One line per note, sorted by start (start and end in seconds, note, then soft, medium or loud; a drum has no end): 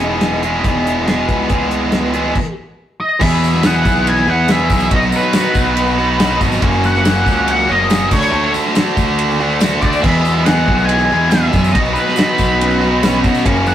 0.00 0.61 E1 medium
0.00 0.44 E2 medium
0.00 0.41 B2 medium
0.00 0.44 E3 medium
0.00 0.43 G#3 medium
0.00 0.43 B3 medium
0.00 0.44 D#4 medium
0.00 0.42 G#4 loud
0.00 closed hi-hat medium
0.21 snare loud
0.21 closed hi-hat medium
0.43 1.04 E2 medium
0.43 1.05 B2 medium
0.43 1.06 E3 medium
0.43 1.06 G#3 medium
0.43 1.06 B3 medium
0.43 0.64 E4 medium
0.43 1.06 G#4 medium
0.43 closed hi-hat medium
0.64 1.25 E1 medium
0.64 0.86 D#4 medium
0.64 kick loud
0.64 closed hi-hat medium
0.87 1.08 E4 medium
0.87 closed hi-hat medium
1.05 1.47 E2 medium
1.05 1.48 B2 medium
1.05 1.48 E3 medium
1.05 1.49 G#3 medium
1.05 1.49 B3 medium
1.05 1.49 G#4 medium
1.05 1.29 G#4 medium
1.05 snare loud
1.05 closed hi-hat medium
1.29 1.49 C#2 medium
1.29 2.54 B4 medium
1.29 kick medium
1.29 closed hi-hat medium
1.49 2.32 C#2 medium
1.49 2.13 E2 medium
1.49 2.13 B2 medium
1.49 2.13 E3 medium
1.49 2.13 G#3 medium
1.49 2.12 B3 medium
1.49 2.11 G#4 medium
1.49 kick loud
1.49 closed hi-hat medium
1.71 closed hi-hat medium
1.92 snare loud
1.92 closed hi-hat medium
2.13 2.35 E2 medium
2.13 2.35 B2 medium
2.13 2.35 E3 medium
2.13 2.34 G#3 medium
2.13 2.34 B3 medium
2.13 2.34 G#4 medium
2.13 closed hi-hat medium
2.35 kick loud
2.35 crash loud
3.00 3.22 D#5 medium
3.20 3.85 E2 medium
3.20 3.82 E2 loud
3.20 3.85 B2 loud
3.20 3.61 E3 loud
3.20 3.63 B3 loud
3.20 3.63 E4 loud
3.20 3.63 G#4 loud
3.20 3.66 E5 loud
3.20 kick loud
3.20 crash loud
3.20 tambourine soft
3.33 tambourine soft
3.44 tambourine medium
3.54 snare soft
3.54 tambourine soft
3.63 4.28 E3 medium
3.63 4.27 B3 medium
3.63 4.26 E4 medium
3.63 4.25 G#4 medium
3.63 4.09 F#5 loud
3.63 snare loud
3.63 ride bell medium
3.63 tambourine loud
3.76 tambourine soft
3.85 4.26 B1 loud
3.85 kick medium
3.85 tambourine medium
3.96 tambourine soft
4.07 4.30 G#5 loud
4.07 ride bell medium
4.07 tambourine soft
4.17 tambourine soft
4.26 4.68 E2 medium
4.26 4.48 E3 medium
4.26 4.48 B3 medium
4.26 4.48 E4 medium
4.26 4.49 G#4 medium
4.26 4.49 F#5 loud
4.26 tambourine soft
4.48 4.90 E2 medium
4.48 4.89 B2 medium
4.48 4.70 E3 loud
4.48 4.69 B3 loud
4.48 4.69 E4 loud
4.48 4.68 G#4 loud
4.48 4.94 E5 loud
4.48 snare loud
4.48 ride bell medium
4.48 tambourine loud
4.59 tambourine soft
4.69 4.91 B1 loud
4.69 4.90 E3 medium
4.69 4.90 B3 medium
4.69 4.91 E4 medium
4.69 4.90 G#4 medium
4.69 kick medium
4.69 tambourine medium
4.80 tambourine medium
4.90 5.12 B1 loud
4.90 5.55 B2 loud
4.90 5.34 F#3 loud
4.90 5.34 B3 loud
4.90 5.34 D#4 loud
4.90 5.36 F#4 loud
4.90 kick loud
4.90 ride bell medium
4.90 tambourine soft
4.96 5.01 D#5 loud
5.02 tambourine soft
5.12 tambourine medium
5.16 6.39 B4 medium
5.23 tambourine soft
5.33 6.19 F#3 medium
5.33 5.99 B3 medium
5.33 5.98 D#4 medium
5.33 5.98 F#4 medium
5.33 snare loud
5.33 ride bell medium
5.33 tambourine loud
5.45 tambourine soft
5.54 6.37 B1 medium
5.54 kick medium
5.54 tambourine medium
5.77 ride bell loud
5.77 tambourine soft
5.87 tambourine soft
5.98 6.19 B3 medium
5.98 6.19 D#4 medium
5.98 6.21 F#4 medium
5.98 tambourine soft
6.19 6.61 B2 loud
6.19 6.62 F#3 loud
6.19 6.41 B3 loud
6.19 6.40 D#4 loud
6.19 6.40 F#4 loud
6.19 snare loud
6.19 ride bell medium
6.19 tambourine medium
6.40 6.61 G#1 loud
6.40 6.62 B3 medium
6.40 6.61 D#4 medium
6.40 6.64 F#4 medium
6.40 kick loud
6.40 tambourine medium
6.52 tambourine medium
6.61 7.23 F#1 loud
6.61 7.26 F#2 medium
6.61 7.26 C#3 loud
6.61 7.03 F#3 loud
6.61 7.03 A#3 loud
6.61 7.04 C#4 loud
6.61 7.06 F#4 loud
6.61 kick loud
6.61 ride bell medium
6.73 tambourine soft
6.84 7.50 F#5 loud
6.84 tambourine medium
6.95 snare soft
6.95 tambourine soft
7.03 7.68 F#3 medium
7.03 7.67 A#3 medium
7.03 7.66 C#4 medium
7.03 7.66 F#4 medium
7.03 snare loud
7.03 ride bell medium
7.03 tambourine medium
7.17 tambourine soft
7.26 7.67 C#2 loud
7.26 kick medium
7.26 tambourine medium
7.38 tambourine soft
7.48 7.72 F#5 loud
7.48 ride bell medium
7.48 tambourine soft
7.59 tambourine soft
7.67 8.10 F#1 medium
7.67 7.89 F#3 medium
7.67 7.89 A#3 medium
7.67 7.89 C#4 medium
7.67 7.90 F#4 medium
7.67 tambourine soft
7.71 8.13 D#5 loud
7.89 8.10 F#2 loud
7.89 8.10 C#3 loud
7.89 8.11 F#3 loud
7.89 8.11 A#3 loud
7.89 8.11 C#4 loud
7.89 8.08 F#4 loud
7.89 snare loud
7.89 ride bell medium
7.89 tambourine medium
8.01 tambourine soft
8.09 8.32 D2 medium
8.09 8.29 D3 medium
8.09 8.30 A3 medium
8.09 8.31 D4 medium
8.09 8.32 F#4 loud
8.09 8.52 C#5 medium
8.09 kick loud
8.09 tambourine medium
8.09 crash loud
8.22 tambourine medium
8.30 8.54 D2 loud
8.30 8.73 D3 loud
8.30 8.74 A3 loud
8.30 8.75 D4 loud
8.30 8.76 F#4 loud
8.30 tambourine soft
8.54 tambourine medium
8.66 snare soft
8.75 9.59 D3 medium
8.75 9.41 A3 medium
8.75 9.40 D4 medium
8.75 9.38 F#4 loud
8.75 snare loud
8.75 ride bell medium
8.75 tambourine medium
8.86 tambourine soft
8.97 9.79 D2 medium
8.97 kick medium
8.97 tambourine medium
9.18 ride bell medium
9.18 tambourine soft
9.30 tambourine soft
9.40 9.60 A3 medium
9.40 9.61 D4 medium
9.40 9.62 F#4 medium
9.40 tambourine soft
9.50 tambourine soft
9.60 10.02 D3 medium
9.60 9.83 A3 medium
9.60 9.81 D4 loud
9.60 9.80 F#4 loud
9.60 snare loud
9.60 ride bell medium
9.60 tambourine loud
9.71 tambourine soft
9.81 10.03 D2 medium
9.81 10.03 A3 medium
9.81 10.03 D4 medium
9.81 10.02 F#4 medium
9.81 10.02 D5 medium
9.81 kick medium
9.81 tambourine medium
9.93 tambourine medium
10.02 10.67 E2 loud
10.02 10.65 E2 loud
10.02 10.67 B2 loud
10.02 10.44 E3 loud
10.02 10.45 G#3 loud
10.02 10.47 B3 loud
10.02 10.46 G#4 loud
10.02 10.47 E5 loud
10.02 kick loud
10.02 crash loud
10.15 tambourine soft
10.25 tambourine medium
10.36 snare soft
10.45 11.12 E3 medium
10.45 11.11 G#3 medium
10.45 11.10 B3 medium
10.45 11.09 G#4 medium
10.45 10.85 F#5 loud
10.45 snare loud
10.45 ride bell medium
10.45 tambourine loud
10.57 tambourine soft
10.68 11.08 B1 loud
10.68 kick medium
10.78 tambourine soft
10.86 11.32 G#5 loud
10.86 ride bell medium
10.86 tambourine soft
10.99 tambourine soft
11.10 11.51 E2 medium
11.10 11.32 E3 medium
11.10 11.31 G#3 medium
11.10 11.32 B3 medium
11.10 11.33 G#4 medium
11.10 tambourine soft
11.30 11.74 E2 loud
11.30 11.72 B2 medium
11.30 11.54 E3 loud
11.30 11.53 G#3 loud
11.30 11.53 B3 loud
11.30 11.71 E5 loud
11.30 snare loud
11.30 ride bell medium
11.30 tambourine loud
11.34 11.51 G#4 loud
11.52 11.74 F#2 medium
11.52 11.73 E3 medium
11.52 11.74 G#3 medium
11.52 11.73 B3 medium
11.52 11.73 G#4 medium
11.52 kick loud
11.52 tambourine medium
11.64 tambourine medium
11.72 11.95 B1 loud
11.72 12.38 B2 loud
11.72 12.15 F#3 loud
11.72 12.16 B3 loud
11.72 12.16 D#4 loud
11.72 12.18 F#4 loud
11.72 11.78 D#5 loud
11.72 kick loud
11.72 ride bell medium
11.85 tambourine soft
11.93 13.19 B4 medium
11.93 tambourine medium
12.06 snare soft
12.06 tambourine soft
12.16 13.02 F#3 medium
12.16 12.82 B3 medium
12.16 12.80 D#4 medium
12.16 12.80 F#4 medium
12.16 snare loud
12.16 ride bell medium
12.16 tambourine loud
12.38 13.21 B1 loud
12.38 kick medium
12.38 tambourine medium
12.50 tambourine soft
12.61 12.82 C#4 loud
12.61 ride bell medium
12.61 tambourine soft
12.70 tambourine soft
12.80 13.02 B3 medium
12.80 13.03 D#4 medium
12.80 13.04 F#4 medium
12.80 13.02 F#4 loud
12.80 tambourine soft
13.02 13.44 B2 medium
13.02 13.45 F#3 loud
13.02 13.25 B3 loud
13.02 13.23 C#4 medium
13.02 13.24 D#4 loud
13.02 13.23 F#4 loud
13.02 snare loud
13.02 ride bell medium
13.02 tambourine loud
13.14 tambourine soft
13.24 13.45 B2 loud
13.24 13.45 B3 medium
13.24 13.55 C#4 medium
13.24 13.45 D#4 medium
13.24 13.46 F#4 medium
13.24 kick loud
13.24 tambourine medium
13.35 tambourine medium
13.45 13.75 F#1 loud
13.45 13.75 F#2 medium
13.45 13.75 C#3 loud
13.45 13.75 F#3 loud
13.45 13.75 A#3 loud
13.45 13.75 C#4 loud
13.45 13.75 F#4 loud
13.45 kick loud
13.45 ride bell medium
13.45 tambourine soft
13.56 tambourine soft
13.66 13.75 F#5 medium
13.66 tambourine medium